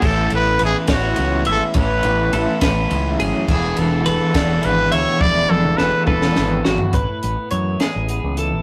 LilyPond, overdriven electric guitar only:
\new Staff \with { instrumentName = "Overdriven electric guitar" } { \time 6/8 \key a \major \tempo 4. = 70 <a, e a cis' e' a'>8 <a cis' e' a'>8 <a cis' e' a'>8 <a, e a cis' e' a'>8 <a cis' e' a'>4 | <a, e a cis' e' a'>8 <a cis' e' a'>8 <a cis' e' a'>8 <a, e a cis' e' a'>8 <a cis' e' a'>4 | <e b d' gis'>8 <b d' gis'>8 <e b d' gis'>8 <e b d' gis'>8 <e b d' gis'>4 | <e b d' gis'>8 <b d' gis'>8 <e b d' gis'>8 <e b d' gis'>8 <e b d' gis'>4 |
r2. | }